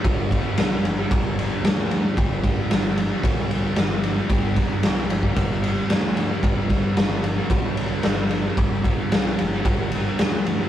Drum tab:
RD |x-x-x-x-x-x-x-x-|x-x-x-x-x-x-x-x-|x-x-x-x-x-x-x-x-|x-x-x-x-x-x-x-x-|
SD |----o-------o---|----o-------o---|--o-o-------o---|--o-o-------o---|
BD |o-o-----o-------|o-o-----o-------|o-o----oo-------|o-o-----o-------|

RD |x-x-x-x-x-x-x-x-|
SD |----o-------o---|
BD |o-o-----o-------|